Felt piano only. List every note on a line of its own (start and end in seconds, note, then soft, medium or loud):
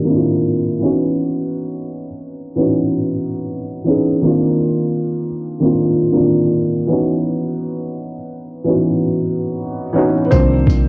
0.00 0.04 D#3 loud
0.00 0.06 A#3 medium
0.00 0.07 C4 medium
0.00 0.09 D4 medium
0.00 0.16 F4 loud
0.00 0.84 G4 medium
0.04 0.67 D#3 medium
0.04 0.68 A#3 medium
0.04 0.69 C4 medium
0.09 0.69 D4 medium
0.09 0.16 E4 medium
0.16 0.73 F4 medium
0.80 2.05 E3 medium
0.80 2.05 B3 medium
0.80 2.06 C#4 medium
0.84 2.07 D#4 medium
0.84 2.07 F#4 loud
2.55 3.53 E3 medium
2.55 3.54 B3 medium
2.55 3.55 C#4 medium
2.55 3.55 D#4 medium
2.61 3.56 F#4 medium
3.84 4.16 E3 medium
3.84 4.17 B3 medium
3.84 4.17 C#4 medium
3.88 4.18 D#4 medium
3.88 4.19 G#4 medium
4.21 5.26 D#3 medium
4.21 5.27 A#3 medium
4.21 5.28 C4 medium
4.26 5.28 D4 medium
4.26 5.29 F4 loud
5.60 6.03 D#3 medium
5.60 6.03 A#3 medium
5.60 6.04 C4 medium
5.64 6.05 D4 medium
5.64 6.05 F4 medium
6.11 6.21 D3 medium
6.11 6.75 A#3 medium
6.11 6.76 C4 medium
6.16 6.78 D#3 medium
6.16 6.77 D4 medium
6.16 6.77 F4 medium
6.87 8.12 E3 medium
6.87 8.13 B3 medium
6.87 8.13 C#4 medium
6.91 8.14 D#4 medium
6.91 8.15 F#4 medium
8.64 9.62 E3 medium
8.64 9.63 B3 medium
8.64 9.63 C#4 medium
8.69 9.64 D#4 medium
8.69 9.65 F#4 medium
9.93 10.24 E3 medium
9.93 10.25 B3 medium
9.93 10.25 C#4 medium
9.93 10.26 D#4 medium
9.98 10.27 F#4 medium
10.25 10.31 B4 medium
10.31 10.86 D#3 medium
10.31 10.86 F3 soft
10.31 10.86 A#3 medium
10.31 10.88 C4 medium
10.31 10.87 D4 medium
10.31 10.88 C5 loud